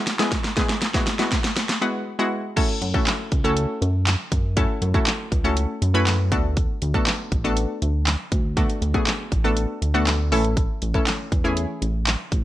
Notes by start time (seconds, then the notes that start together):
0.07 snare, closed hi-hat
0.19 G#3 B3 E4 G#4, snare
0.32 kick, snare, closed hi-hat
0.44 snare
0.57 G#3 B3 E4 G#4, kick, snare, closed hi-hat
0.69 snare, closed hi-hat
0.82 snare, closed hi-hat
0.94 G#3 B3 E4 F#4, kick, snare
1.07 snare, closed hi-hat
1.19 G#3 B3 E4 F#4, snare
1.32 kick, snare, closed hi-hat
1.44 snare
1.56 snare, closed hi-hat
1.69 snare
1.81 G#3 B3 E4 F#4, closed hi-hat
2.19 G#3 B3 E4 F#4
2.56 A3 C#4 E4 F#4 A4, kick, closed hi-hat, crash
2.82 F#2, closed hi-hat
2.94 A3 C#4 E4 F#4 A4, kick
3.07 snare, clap, closed hi-hat
3.32 C#2, kick, closed hi-hat
3.44 A3 C#4 E4 F#4 A4
3.57 closed hi-hat
3.82 F#2, closed hi-hat
4.07 snare, clap, closed hi-hat
4.32 F#2, kick, closed hi-hat
4.57 A3 C#4 E4 F#4 A4, kick, closed hi-hat
4.82 F#2, closed hi-hat
4.94 A3 C#4 E4 F#4 A4, kick
5.07 snare, clap, closed hi-hat
5.32 C#2, kick, closed hi-hat
5.44 A3 C#4 E4 F#4 A4
5.57 closed hi-hat
5.82 F#2, closed hi-hat
5.94 A3 C#4 E4 F#4 B4
6.07 snare, clap, closed hi-hat
6.32 D2 A3 B3 D4 F#4 A4, kick, closed hi-hat
6.57 kick, closed hi-hat
6.82 D2, closed hi-hat
6.94 A3 B3 D4 F#4 A4, kick
7.07 snare, clap, closed hi-hat
7.32 A1, kick, closed hi-hat
7.44 A3 B3 D4 F#4 A4
7.57 closed hi-hat
7.82 D2, closed hi-hat
8.07 snare, clap, closed hi-hat
8.32 D2, kick, closed hi-hat
8.57 A3 B3 D4 F#4 A4, kick, closed hi-hat
8.70 closed hi-hat
8.82 D2, closed hi-hat
8.94 A3 B3 D4 F#4 G#4, kick
9.07 snare, clap, closed hi-hat
9.32 A1, kick, closed hi-hat
9.44 A3 B3 D4 F#4 A4
9.57 closed hi-hat
9.82 D2, closed hi-hat
9.94 A3 B3 D4 F#4 A4
10.07 snare, clap, closed hi-hat
10.32 A1 E3 A3 C#4 E4 A4, open hi-hat
10.44 closed hi-hat
10.57 kick, closed hi-hat
10.82 A1, closed hi-hat
10.94 E3 A3 C#4 E4 A4, kick
11.07 snare, clap, closed hi-hat
11.32 E2, kick, closed hi-hat
11.44 E3 A3 C#4 E4 G#4
11.57 closed hi-hat
11.82 A1, closed hi-hat
12.07 snare, clap, closed hi-hat
12.32 A1, kick, closed hi-hat